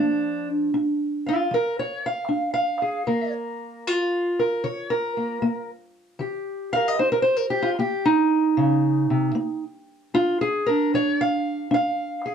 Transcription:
0, 0, Header, 1, 2, 480
1, 0, Start_track
1, 0, Tempo, 785340
1, 1887, Time_signature, 4, 2, 24, 8
1, 7547, End_track
2, 0, Start_track
2, 0, Title_t, "Steel-string acoustic guitar"
2, 0, Program_c, 0, 25
2, 0, Note_on_c, 0, 53, 43
2, 0, Note_on_c, 0, 58, 77
2, 0, Note_on_c, 0, 62, 90
2, 290, Note_off_c, 0, 62, 0
2, 421, Note_off_c, 0, 58, 0
2, 449, Note_off_c, 0, 53, 0
2, 452, Note_on_c, 0, 62, 64
2, 773, Note_on_c, 0, 77, 43
2, 786, Note_on_c, 0, 65, 80
2, 898, Note_off_c, 0, 62, 0
2, 922, Note_on_c, 0, 53, 59
2, 936, Note_off_c, 0, 65, 0
2, 941, Note_on_c, 0, 70, 90
2, 1093, Note_off_c, 0, 70, 0
2, 1096, Note_on_c, 0, 73, 84
2, 1248, Note_off_c, 0, 77, 0
2, 1251, Note_off_c, 0, 73, 0
2, 1259, Note_on_c, 0, 77, 87
2, 1373, Note_off_c, 0, 53, 0
2, 1397, Note_on_c, 0, 62, 72
2, 1543, Note_off_c, 0, 77, 0
2, 1550, Note_on_c, 0, 77, 95
2, 1723, Note_on_c, 0, 68, 44
2, 1851, Note_off_c, 0, 62, 0
2, 1864, Note_off_c, 0, 68, 0
2, 1875, Note_on_c, 0, 51, 70
2, 1875, Note_on_c, 0, 58, 47
2, 1877, Note_on_c, 0, 70, 45
2, 2038, Note_off_c, 0, 77, 0
2, 2330, Note_off_c, 0, 51, 0
2, 2367, Note_off_c, 0, 58, 0
2, 2367, Note_on_c, 0, 65, 90
2, 2683, Note_off_c, 0, 70, 0
2, 2686, Note_on_c, 0, 70, 77
2, 2687, Note_off_c, 0, 65, 0
2, 2834, Note_on_c, 0, 51, 60
2, 2835, Note_on_c, 0, 73, 89
2, 2846, Note_off_c, 0, 70, 0
2, 2996, Note_on_c, 0, 70, 92
2, 3000, Note_off_c, 0, 73, 0
2, 3159, Note_on_c, 0, 58, 42
2, 3290, Note_off_c, 0, 51, 0
2, 3310, Note_off_c, 0, 58, 0
2, 3312, Note_on_c, 0, 58, 75
2, 3481, Note_off_c, 0, 70, 0
2, 3768, Note_off_c, 0, 58, 0
2, 3783, Note_on_c, 0, 51, 70
2, 3792, Note_on_c, 0, 67, 46
2, 4112, Note_on_c, 0, 77, 102
2, 4132, Note_on_c, 0, 70, 43
2, 4204, Note_off_c, 0, 77, 0
2, 4204, Note_on_c, 0, 75, 92
2, 4244, Note_off_c, 0, 51, 0
2, 4270, Note_off_c, 0, 70, 0
2, 4271, Note_off_c, 0, 75, 0
2, 4273, Note_on_c, 0, 72, 86
2, 4276, Note_on_c, 0, 63, 60
2, 4348, Note_off_c, 0, 72, 0
2, 4350, Note_on_c, 0, 70, 101
2, 4411, Note_off_c, 0, 70, 0
2, 4414, Note_on_c, 0, 72, 92
2, 4501, Note_off_c, 0, 72, 0
2, 4501, Note_on_c, 0, 70, 85
2, 4552, Note_off_c, 0, 70, 0
2, 4578, Note_off_c, 0, 67, 0
2, 4585, Note_on_c, 0, 67, 91
2, 4660, Note_on_c, 0, 65, 81
2, 4703, Note_off_c, 0, 67, 0
2, 4730, Note_off_c, 0, 63, 0
2, 4739, Note_off_c, 0, 65, 0
2, 4759, Note_on_c, 0, 58, 63
2, 4764, Note_on_c, 0, 67, 85
2, 4923, Note_on_c, 0, 63, 95
2, 4925, Note_off_c, 0, 67, 0
2, 5211, Note_off_c, 0, 58, 0
2, 5238, Note_on_c, 0, 49, 74
2, 5561, Note_off_c, 0, 49, 0
2, 5563, Note_on_c, 0, 48, 61
2, 5711, Note_off_c, 0, 48, 0
2, 5714, Note_on_c, 0, 58, 74
2, 5884, Note_off_c, 0, 63, 0
2, 6168, Note_off_c, 0, 58, 0
2, 6198, Note_on_c, 0, 62, 61
2, 6201, Note_on_c, 0, 65, 108
2, 6361, Note_off_c, 0, 65, 0
2, 6364, Note_on_c, 0, 68, 93
2, 6518, Note_on_c, 0, 70, 93
2, 6525, Note_off_c, 0, 62, 0
2, 6525, Note_off_c, 0, 68, 0
2, 6533, Note_on_c, 0, 62, 46
2, 6682, Note_off_c, 0, 70, 0
2, 6685, Note_on_c, 0, 53, 66
2, 6691, Note_on_c, 0, 73, 92
2, 6849, Note_off_c, 0, 73, 0
2, 6851, Note_on_c, 0, 77, 101
2, 7134, Note_off_c, 0, 53, 0
2, 7149, Note_off_c, 0, 62, 0
2, 7156, Note_on_c, 0, 62, 78
2, 7168, Note_off_c, 0, 77, 0
2, 7176, Note_on_c, 0, 77, 100
2, 7491, Note_on_c, 0, 68, 49
2, 7547, Note_off_c, 0, 62, 0
2, 7547, Note_off_c, 0, 68, 0
2, 7547, Note_off_c, 0, 77, 0
2, 7547, End_track
0, 0, End_of_file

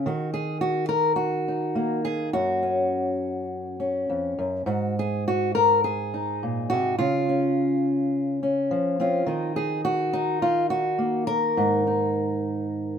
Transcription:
0, 0, Header, 1, 2, 480
1, 0, Start_track
1, 0, Tempo, 569260
1, 56, Time_signature, 4, 2, 24, 8
1, 2456, Tempo, 586510
1, 4856, Tempo, 570342
1, 8696, Tempo, 582524
1, 10820, End_track
2, 0, Start_track
2, 0, Title_t, "Steel-string acoustic guitar"
2, 0, Program_c, 0, 25
2, 50, Note_on_c, 0, 51, 77
2, 57, Note_on_c, 0, 66, 52
2, 280, Note_off_c, 0, 66, 0
2, 283, Note_on_c, 0, 68, 79
2, 511, Note_off_c, 0, 68, 0
2, 514, Note_on_c, 0, 66, 94
2, 745, Note_off_c, 0, 66, 0
2, 748, Note_on_c, 0, 70, 102
2, 974, Note_off_c, 0, 70, 0
2, 977, Note_on_c, 0, 66, 79
2, 1250, Note_on_c, 0, 63, 41
2, 1479, Note_on_c, 0, 58, 57
2, 1715, Note_off_c, 0, 66, 0
2, 1726, Note_on_c, 0, 68, 96
2, 1938, Note_off_c, 0, 58, 0
2, 1944, Note_off_c, 0, 63, 0
2, 1964, Note_off_c, 0, 68, 0
2, 1968, Note_off_c, 0, 51, 0
2, 1968, Note_on_c, 0, 42, 75
2, 1968, Note_on_c, 0, 66, 88
2, 2215, Note_on_c, 0, 61, 46
2, 3170, Note_off_c, 0, 61, 0
2, 3180, Note_on_c, 0, 61, 41
2, 3417, Note_off_c, 0, 66, 0
2, 3419, Note_off_c, 0, 42, 0
2, 3424, Note_on_c, 0, 41, 51
2, 3658, Note_off_c, 0, 41, 0
2, 3661, Note_on_c, 0, 42, 59
2, 3871, Note_off_c, 0, 61, 0
2, 3884, Note_off_c, 0, 42, 0
2, 3887, Note_on_c, 0, 44, 75
2, 3895, Note_on_c, 0, 66, 47
2, 4136, Note_off_c, 0, 66, 0
2, 4158, Note_on_c, 0, 68, 75
2, 4388, Note_off_c, 0, 68, 0
2, 4391, Note_on_c, 0, 66, 84
2, 4610, Note_off_c, 0, 66, 0
2, 4613, Note_on_c, 0, 70, 100
2, 4850, Note_off_c, 0, 70, 0
2, 4853, Note_on_c, 0, 68, 79
2, 5103, Note_on_c, 0, 63, 42
2, 5348, Note_on_c, 0, 46, 54
2, 5570, Note_off_c, 0, 68, 0
2, 5573, Note_on_c, 0, 66, 104
2, 5586, Note_off_c, 0, 46, 0
2, 5595, Note_on_c, 0, 48, 61
2, 5789, Note_off_c, 0, 44, 0
2, 5798, Note_off_c, 0, 63, 0
2, 5812, Note_off_c, 0, 66, 0
2, 5815, Note_on_c, 0, 65, 96
2, 5819, Note_off_c, 0, 48, 0
2, 5823, Note_on_c, 0, 49, 73
2, 6071, Note_on_c, 0, 61, 43
2, 7020, Note_off_c, 0, 61, 0
2, 7030, Note_on_c, 0, 61, 46
2, 7255, Note_off_c, 0, 65, 0
2, 7259, Note_off_c, 0, 49, 0
2, 7266, Note_on_c, 0, 53, 59
2, 7502, Note_off_c, 0, 61, 0
2, 7509, Note_on_c, 0, 60, 53
2, 7515, Note_on_c, 0, 61, 49
2, 7520, Note_on_c, 0, 65, 49
2, 7712, Note_off_c, 0, 53, 0
2, 7714, Note_off_c, 0, 60, 0
2, 7717, Note_off_c, 0, 61, 0
2, 7734, Note_on_c, 0, 51, 73
2, 7746, Note_on_c, 0, 63, 53
2, 7980, Note_off_c, 0, 65, 0
2, 7984, Note_on_c, 0, 68, 84
2, 8219, Note_off_c, 0, 68, 0
2, 8224, Note_on_c, 0, 66, 98
2, 8462, Note_off_c, 0, 63, 0
2, 8465, Note_on_c, 0, 63, 85
2, 8700, Note_off_c, 0, 66, 0
2, 8708, Note_on_c, 0, 65, 84
2, 8935, Note_off_c, 0, 65, 0
2, 8938, Note_on_c, 0, 66, 90
2, 9171, Note_on_c, 0, 58, 55
2, 9176, Note_off_c, 0, 63, 0
2, 9403, Note_off_c, 0, 66, 0
2, 9407, Note_on_c, 0, 70, 107
2, 9656, Note_on_c, 0, 44, 74
2, 9663, Note_on_c, 0, 63, 50
2, 9681, Note_off_c, 0, 58, 0
2, 9891, Note_off_c, 0, 63, 0
2, 9901, Note_on_c, 0, 63, 41
2, 10820, Note_off_c, 0, 44, 0
2, 10820, Note_off_c, 0, 51, 0
2, 10820, Note_off_c, 0, 63, 0
2, 10820, Note_off_c, 0, 70, 0
2, 10820, End_track
0, 0, End_of_file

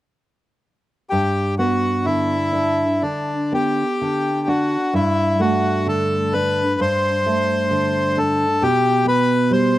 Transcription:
0, 0, Header, 1, 3, 480
1, 0, Start_track
1, 0, Key_signature, 1, "major"
1, 0, Tempo, 946372
1, 570, Time_signature, 4, 2, 24, 8
1, 1048, Tempo, 975610
1, 2008, Tempo, 928793
1, 3928, Tempo, 892857
1, 5031, End_track
2, 0, Start_track
2, 0, Title_t, "Bandoneon"
2, 0, Program_c, 0, 23
2, 557, Note_on_c, 0, 67, 47
2, 786, Note_off_c, 0, 67, 0
2, 803, Note_on_c, 0, 66, 39
2, 1042, Note_on_c, 0, 64, 46
2, 1044, Note_off_c, 0, 66, 0
2, 1518, Note_on_c, 0, 62, 42
2, 1520, Note_off_c, 0, 64, 0
2, 1768, Note_off_c, 0, 62, 0
2, 1772, Note_on_c, 0, 67, 48
2, 2245, Note_on_c, 0, 66, 46
2, 2249, Note_off_c, 0, 67, 0
2, 2486, Note_off_c, 0, 66, 0
2, 2488, Note_on_c, 0, 64, 49
2, 2725, Note_on_c, 0, 66, 43
2, 2728, Note_off_c, 0, 64, 0
2, 2967, Note_off_c, 0, 66, 0
2, 2973, Note_on_c, 0, 69, 46
2, 3204, Note_on_c, 0, 71, 51
2, 3207, Note_off_c, 0, 69, 0
2, 3447, Note_off_c, 0, 71, 0
2, 3451, Note_on_c, 0, 72, 56
2, 4168, Note_on_c, 0, 69, 52
2, 4171, Note_off_c, 0, 72, 0
2, 4408, Note_on_c, 0, 67, 59
2, 4411, Note_off_c, 0, 69, 0
2, 4644, Note_off_c, 0, 67, 0
2, 4652, Note_on_c, 0, 71, 58
2, 4889, Note_off_c, 0, 71, 0
2, 4890, Note_on_c, 0, 72, 50
2, 5031, Note_off_c, 0, 72, 0
2, 5031, End_track
3, 0, Start_track
3, 0, Title_t, "Nylon-string guitar"
3, 0, Program_c, 1, 24
3, 567, Note_on_c, 1, 43, 39
3, 806, Note_on_c, 1, 59, 26
3, 1045, Note_on_c, 1, 50, 31
3, 1185, Note_off_c, 1, 59, 0
3, 1274, Note_on_c, 1, 62, 28
3, 1422, Note_off_c, 1, 50, 0
3, 1502, Note_off_c, 1, 43, 0
3, 1522, Note_on_c, 1, 50, 28
3, 1670, Note_off_c, 1, 62, 0
3, 1765, Note_on_c, 1, 59, 28
3, 1914, Note_off_c, 1, 50, 0
3, 2006, Note_on_c, 1, 50, 29
3, 2150, Note_off_c, 1, 59, 0
3, 2246, Note_on_c, 1, 62, 34
3, 2391, Note_off_c, 1, 50, 0
3, 2482, Note_on_c, 1, 43, 37
3, 2486, Note_off_c, 1, 62, 0
3, 2720, Note_on_c, 1, 57, 30
3, 2964, Note_on_c, 1, 50, 32
3, 3109, Note_off_c, 1, 57, 0
3, 3209, Note_on_c, 1, 62, 30
3, 3351, Note_off_c, 1, 50, 0
3, 3426, Note_off_c, 1, 43, 0
3, 3446, Note_on_c, 1, 43, 37
3, 3594, Note_off_c, 1, 62, 0
3, 3685, Note_on_c, 1, 57, 34
3, 3916, Note_on_c, 1, 50, 37
3, 4071, Note_off_c, 1, 57, 0
3, 4166, Note_on_c, 1, 62, 35
3, 4310, Note_off_c, 1, 50, 0
3, 4388, Note_off_c, 1, 43, 0
3, 4406, Note_on_c, 1, 47, 48
3, 4410, Note_off_c, 1, 62, 0
3, 4636, Note_on_c, 1, 59, 31
3, 4882, Note_on_c, 1, 55, 34
3, 5024, Note_off_c, 1, 59, 0
3, 5031, Note_off_c, 1, 47, 0
3, 5031, Note_off_c, 1, 55, 0
3, 5031, End_track
0, 0, End_of_file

